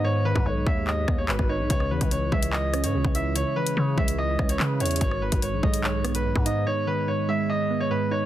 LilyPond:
<<
  \new Staff \with { instrumentName = "Upright piano" } { \time 4/4 \key gis \minor \tempo 4 = 145 cis''8 b'8 cis''8 e''8 dis''8. cis''16 b'8 cis''8 | cis''8 b'8 cis''8 e''8 dis''8. cis''8. e''8 | cis''8 b'8 cis''8 e''8 dis''8. cis''16 b'8 cis''8 | cis''8 b'8 cis''8 dis''8 cis''8. b'8. dis''8 |
cis''8 b'8 cis''8 e''8 dis''8. cis''16 b'8 cis''8 | }
  \new Staff \with { instrumentName = "Synth keys" } { \clef bass \time 4/4 \key gis \minor <gis, b dis'>8 dis8 gis,8 gis4 b8 gis,8 dis'8 | cis8 e8 cis8 gis4 cis'8 cis8 e'8 | cis8 e8 cis8 gis4 cis'8 cis8 e'8 | gis,8 dis8 gis,8 gis4 b8 gis,8 dis'8 |
gis,8 dis8 gis,8 gis4 b8 gis,8 dis'8 | }
  \new Staff \with { instrumentName = "808-style bass" } { \clef bass \time 4/4 \key gis \minor gis,8. gis,16 b,,8 dis,4 dis,8 gis,,16 gis,,8 b,,16 | cis,8 e,16 cis,8. cis,4~ cis,16 gis,16 cis,16 cis,8.~ | cis,16 r8. cis8 cis,4 cis,8 cis8 e,8 | gis,,8. gis,,8 b,,16 b,,4.~ b,,16 gis,8. |
r1 | }
  \new DrumStaff \with { instrumentName = "Drums" } \drummode { \time 4/4 r8. bd16 r8 bd8 hc8 <bd ss>8 hc16 <bd ss>8. | <hh bd>16 ss8 <hh bd>16 hh8 bd16 hh16 hc8 <hh ss>16 hh16 r16 bd16 hh8 | hh8. hh16 r8 bd16 hh16 r8 <bd ss>16 hh16 hc8 <hh hho>32 hh32 hh32 hh32 | <hh bd>16 ss8 <hh bd>16 hh8 bd16 hh16 hc8 <hh ss>16 hh16 r16 bd16 hh8 |
r4 r4 r4 r4 | }
>>